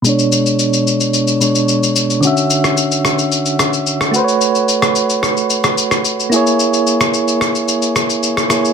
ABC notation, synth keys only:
X:1
M:4/4
L:1/8
Q:1/4=110
K:Bdor
V:1 name="Synth keys"
[B,,G,Dc]4- [B,,G,Dc] [B,,G,Dc]3 | [D,CFe]6- [D,CFe] [A,FB=c^c]- | [A,FB=c^c]6- [A,FB=c^c] [^A,EGc]- | [^A,EGc]6- [A,EGc] [A,EGc] |]